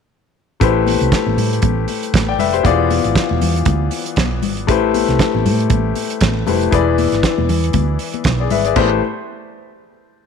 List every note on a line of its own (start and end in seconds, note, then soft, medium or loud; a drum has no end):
0.60 0.95 A1 loud
0.60 2.61 A3 medium
0.60 2.61 E4 medium
0.60 2.11 G4 medium
0.60 2.12 B4 medium
0.60 2.12 C5 medium
0.60 kick loud
0.60 closed hi-hat medium
0.60 muted conga soft
0.87 open hi-hat medium
0.87 muted conga soft
0.87 high conga medium
1.01 1.11 C2 medium
1.01 closed hi-hat soft
1.12 kick loud
1.12 snare loud
1.12 closed hi-hat medium
1.12 muted conga soft
1.26 1.36 A1 medium
1.26 high conga medium
1.37 1.59 A2 loud
1.37 open hi-hat medium
1.37 muted conga soft
1.37 low conga medium
1.53 closed hi-hat soft
1.62 1.84 A1 loud
1.62 kick loud
1.62 closed hi-hat medium
1.62 high conga medium
1.62 low conga medium
1.88 open hi-hat medium
1.88 muted conga soft
2.03 closed hi-hat soft
2.14 2.40 A1 medium
2.14 kick loud
2.14 snare medium
2.14 closed hi-hat medium
2.14 high conga medium
2.28 2.39 D5 medium
2.28 2.39 G5 medium
2.39 2.61 F1 medium
2.39 2.53 B4 medium
2.39 2.53 E5 medium
2.39 open hi-hat medium
2.39 low conga medium
2.53 2.78 G4 medium
2.53 2.78 C5 medium
2.53 closed hi-hat soft
2.63 2.98 E1 loud
2.63 4.64 E3 medium
2.63 4.64 B3 medium
2.63 4.64 F4 medium
2.63 4.65 G#4 medium
2.63 4.65 D5 medium
2.63 kick loud
2.63 closed hi-hat medium
2.63 muted conga soft
2.90 open hi-hat medium
2.90 muted conga soft
2.90 high conga medium
3.04 3.14 G#1 medium
3.04 closed hi-hat soft
3.15 kick loud
3.15 snare loud
3.15 closed hi-hat medium
3.30 3.40 E1 medium
3.30 high conga medium
3.41 3.63 E2 loud
3.41 open hi-hat medium
3.41 low conga medium
3.56 closed hi-hat soft
3.65 3.88 D2 loud
3.65 kick loud
3.65 closed hi-hat medium
3.65 high conga medium
3.65 low conga medium
3.91 open hi-hat medium
3.91 muted conga soft
4.06 closed hi-hat soft
4.16 4.44 B1 medium
4.16 kick medium
4.16 snare loud
4.16 closed hi-hat medium
4.16 high conga medium
4.42 4.69 G#1 medium
4.42 open hi-hat medium
4.42 low conga medium
4.57 closed hi-hat soft
4.67 5.02 A1 medium
4.67 6.42 A3 medium
4.67 6.43 E4 medium
4.67 6.43 G4 medium
4.67 6.43 B4 medium
4.67 6.44 C5 medium
4.67 kick loud
4.67 closed hi-hat medium
4.94 open hi-hat medium
4.94 muted conga soft
4.94 high conga medium
5.08 5.18 C2 medium
5.08 snare soft
5.08 closed hi-hat soft
5.19 kick loud
5.19 snare loud
5.19 closed hi-hat medium
5.34 5.47 A1 medium
5.34 high conga medium
5.45 5.67 A2 loud
5.45 open hi-hat medium
5.45 low conga medium
5.60 closed hi-hat soft
5.70 5.92 A1 loud
5.70 kick loud
5.70 closed hi-hat medium
5.70 muted conga soft
5.70 high conga medium
5.70 low conga medium
5.95 open hi-hat medium
5.95 muted conga soft
6.10 closed hi-hat soft
6.21 6.43 A1 medium
6.21 kick loud
6.21 snare loud
6.21 closed hi-hat medium
6.21 high conga medium
6.46 6.68 F1 medium
6.46 6.72 A3 medium
6.46 6.70 E4 medium
6.46 6.73 G4 medium
6.46 6.71 B4 soft
6.46 6.73 C5 medium
6.46 open hi-hat medium
6.46 muted conga soft
6.46 low conga medium
6.61 closed hi-hat soft
6.71 7.06 E1 medium
6.71 8.71 E3 medium
6.71 8.72 E4 medium
6.71 7.97 G#4 medium
6.71 7.97 B4 medium
6.71 7.98 D5 medium
6.71 kick loud
6.71 closed hi-hat medium
6.98 open hi-hat medium
6.98 muted conga soft
6.98 high conga medium
7.12 7.22 G#1 medium
7.12 snare soft
7.12 closed hi-hat soft
7.23 kick loud
7.23 snare loud
7.23 closed hi-hat medium
7.38 7.47 E1 medium
7.38 high conga medium
7.49 7.70 E2 loud
7.49 open hi-hat medium
7.49 muted conga soft
7.49 low conga medium
7.64 closed hi-hat soft
7.73 7.96 D2 medium
7.73 kick loud
7.73 closed hi-hat medium
7.73 muted conga soft
7.73 high conga medium
7.73 low conga medium
7.99 open hi-hat medium
8.14 closed hi-hat soft
8.14 high conga medium
8.24 8.46 B1 medium
8.24 kick loud
8.24 snare loud
8.24 closed hi-hat medium
8.24 muted conga soft
8.24 high conga medium
8.40 8.51 G#4 medium
8.40 8.51 D5 medium
8.50 8.72 G#1 medium
8.50 8.65 B4 medium
8.50 8.65 E5 medium
8.50 open hi-hat medium
8.50 muted conga soft
8.50 low conga medium
8.65 8.90 G#4 medium
8.65 8.89 D5 medium
8.65 closed hi-hat soft
8.76 9.00 A1 medium
8.76 9.00 A3 medium
8.76 9.00 E4 medium
8.76 9.00 G4 medium
8.76 9.00 B4 medium
8.76 9.00 C5 medium
8.76 kick loud
8.76 crash medium
8.76 high conga medium